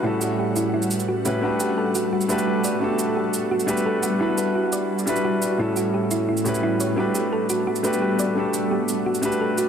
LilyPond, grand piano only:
\new Staff \with { instrumentName = "Grand piano" } { \time 4/4 \key g \lydian \tempo 4 = 173 <a, g cis' e' fis' a'>2~ <a, g cis' e' fis' a'>8 r4 <a, g cis' e' fis' b'>8 | <a d' fis' g' b'>2~ <a d' fis' g' b'>8 <a d' fis' g' b'>4. | <a d' fis' g' a'>2~ <a d' fis' g' a'>8 <a d' fis' g' b'>4. | <g d' e' fis' b'>2~ <g d' e' fis' b'>8 <g d' e' fis' b'>4. |
<a, g cis' e' fis' a'>2~ <a, g cis' e' fis' a'>8 <a, g cis' e' fis' b'>4. | <a d' fis' g' b'>2~ <a d' fis' g' b'>8 <a d' fis' g' b'>4. | <a d' fis' g' a'>2~ <a d' fis' g' a'>8 <a d' fis' g' b'>4. | }